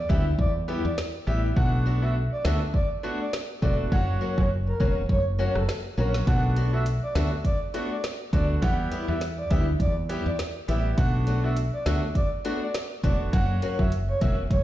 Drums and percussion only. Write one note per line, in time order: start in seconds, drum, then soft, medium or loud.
0.10 kick loud
0.39 kick medium
0.98 snare loud
1.57 kick loud
2.45 snare loud
2.74 kick medium
3.33 snare loud
3.62 kick medium
3.92 kick loud
4.38 kick loud
4.80 kick loud
5.09 kick medium
5.55 cross-stick medium
5.69 snare loud
6.14 snare medium
6.27 kick loud
6.27 closed hi-hat medium
6.56 closed hi-hat medium
6.86 closed hi-hat medium
7.15 snare loud
7.15 closed hi-hat medium
7.45 kick medium
7.45 closed hi-hat medium
7.74 closed hi-hat medium
8.04 snare loud
8.04 closed hi-hat medium
8.33 kick medium
8.33 closed hi-hat medium
8.62 kick loud
8.62 closed hi-hat medium
8.92 closed hi-hat medium
9.21 snare medium
9.21 closed hi-hat medium
9.51 kick loud
9.51 closed hi-hat soft
9.80 kick medium
9.80 closed hi-hat medium
10.10 closed hi-hat medium
10.39 snare loud
10.39 closed hi-hat medium
10.69 closed hi-hat medium
10.98 kick loud
10.98 closed hi-hat medium
11.27 closed hi-hat medium
11.57 closed hi-hat medium
11.86 snare loud
11.86 closed hi-hat medium
12.15 kick medium
12.15 closed hi-hat medium
12.45 closed hi-hat medium
12.74 snare loud
12.74 closed hi-hat medium
13.04 kick medium
13.04 closed hi-hat medium
13.33 kick loud
13.33 closed hi-hat medium
13.62 closed hi-hat medium
13.79 kick loud
13.92 closed hi-hat medium
14.21 kick loud
14.21 closed hi-hat medium
14.51 kick medium
14.51 closed hi-hat medium